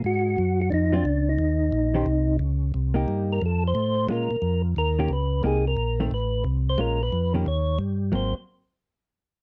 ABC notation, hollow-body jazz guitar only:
X:1
M:4/4
L:1/8
Q:"Swing" 1/4=178
K:Ebdor
V:1 name="Hollow-body jazz guitar"
z4 z [G,CF] z2 | z3 [E,D=Gc] z4 | z [B,E=G]3 z4 | [A,DF] z4 [E,B,D=G] z2 |
[B,E=G] z2 [E,=A,C] z4 | [A,DF] z2 [E,B,D=G] z4 | [G,B,C] z6 z |]